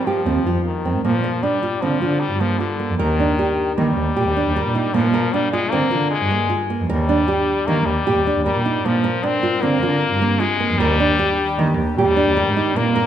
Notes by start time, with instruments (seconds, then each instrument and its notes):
Already playing: woodwind section F3 D#4 F4 G4 A#4
0.06 french horn F3, nylon-string guitar G4
0.25 cello D#2, nylon-string guitar C4
0.45 cello F2, nylon-string guitar F4
0.65 french horn D#3
0.85 cello F2, nylon-string guitar C4
0.95 cello G#2
1.04 cello A#2, french horn F3, nylon-string guitar A#3
1.24 nylon-string guitar A#4
1.43 french horn G3, nylon-string guitar D4
1.63 nylon-string guitar F4
1.81 cello D3, french horn F3, nylon-string guitar C4
2.02 cello D3, nylon-string guitar F4
2.20 french horn G3
2.32 cello G2
2.40 french horn F3, nylon-string guitar A#3
2.59 french horn D3, nylon-string guitar F4
2.79 nylon-string guitar A#3
2.90 cello F2
2.98 cello D#2, french horn D#3, nylon-string guitar A#4
3.20 nylon-string guitar D4
3.39 nylon-string guitar G4
3.77 cello D#3, french horn G3, nylon-string guitar A#3
3.97 cello D#2
4.16 cello A#2, nylon-string guitar G4
4.27 cello D#2
4.37 nylon-string guitar D4
4.46 cello D#2
4.56 nylon-string guitar A#4
4.66 cello A#2
4.75 nylon-string guitar D#4
4.94 cello A#2, french horn F3, nylon-string guitar A#3
5.14 nylon-string guitar A#4
5.33 french horn G3, nylon-string guitar D4
5.53 french horn G#3, nylon-string guitar F4
5.70 cello D3, french horn A#3, nylon-string guitar C4
5.91 cello D3, nylon-string guitar F4
6.11 french horn G#3
6.22 cello G2
6.31 nylon-string guitar A#3
6.50 nylon-string guitar F4
6.70 nylon-string guitar A#3
6.80 cello F2
6.89 cello D#2, french horn G3, nylon-string guitar A#4
7.09 nylon-string guitar D4
7.28 nylon-string guitar G4
7.66 cello D#3, french horn A#3, nylon-string guitar A#3
7.86 cello D#2, french horn G3
8.06 cello A#2, nylon-string guitar G4
8.16 cello D#2
8.27 nylon-string guitar D4
8.36 cello D#2
8.45 french horn G3, nylon-string guitar A#4
8.55 cello A#2
8.66 nylon-string guitar D#4
8.84 cello A#2, french horn F3, nylon-string guitar A#3, woodwind section C4 D4 A#4
9.04 nylon-string guitar A#4
9.23 french horn C4, nylon-string guitar D4
9.43 nylon-string guitar F4
9.62 cello D3, french horn A#3, nylon-string guitar C4
9.82 cello D3, nylon-string guitar F4
10.12 cello G2
10.22 nylon-string guitar A#3
10.40 french horn G#3, nylon-string guitar F4
10.60 nylon-string guitar A#3
10.70 cello F2
10.78 cello D#2, woodwind section D#3 D4 G4, french horn G3, nylon-string guitar A#4
11.00 nylon-string guitar D4
11.19 nylon-string guitar G4
11.58 cello D#3, nylon-string guitar A#3
11.78 cello D#2
11.96 cello A#2, french horn G3, nylon-string guitar G4
12.08 cello D#2
12.16 nylon-string guitar D4
12.27 cello D#2
12.37 nylon-string guitar A#4
12.47 cello G#2
12.57 nylon-string guitar D#4
12.76 cello A#2, nylon-string guitar A#3, french horn A#3, woodwind section C4 D4 A#4
12.96 nylon-string guitar A#4